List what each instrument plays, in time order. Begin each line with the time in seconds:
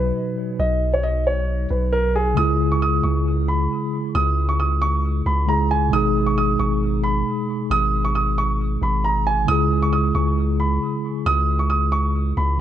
Already playing: 808-style bass B1, tine electric piano B2 F#3 D#4 F#4, grand piano B4
0.59 808-style bass B1, grand piano D#5
0.94 grand piano C#5
1.03 grand piano D#5
1.27 grand piano C#5
1.70 808-style bass B1, grand piano B4
1.93 grand piano A#4
2.16 grand piano G#4
2.34 808-style bass C#2, tine electric piano C#3 G#3, grand piano D#6
2.38 tine electric piano E4 G#4
2.72 grand piano C#6
2.82 grand piano D#6
3.03 808-style bass C#2, grand piano C#6
3.48 grand piano B5
4.15 808-style bass C#2, grand piano D#6
4.49 grand piano C#6
4.60 grand piano D#6
4.82 grand piano C#6
5.26 808-style bass C#2, grand piano B5
5.46 tine electric piano C#3 G#3 E4 G#4, grand piano A#5
5.71 grand piano G#5
5.89 808-style bass G#1, tine electric piano B2 G#3
5.93 tine electric piano D#4 G#4, grand piano D#6
6.27 grand piano C#6
6.38 grand piano D#6
6.59 808-style bass G#1, grand piano C#6
7.03 grand piano B5
7.70 808-style bass G#1, grand piano D#6
8.05 grand piano C#6
8.15 grand piano D#6
8.38 grand piano C#6
8.82 808-style bass G#1, grand piano B5
9.04 grand piano A#5
9.27 grand piano G#5
9.45 808-style bass C#2, tine electric piano C#3 G#3, grand piano D#6
9.49 tine electric piano E4 G#4
9.82 grand piano C#6
9.93 grand piano D#6
10.15 808-style bass C#2, grand piano C#6
10.60 grand piano B5
11.26 808-style bass C#2, grand piano D#6
11.59 grand piano C#6
11.70 grand piano D#6
11.92 grand piano C#6
12.37 808-style bass C#2, grand piano B5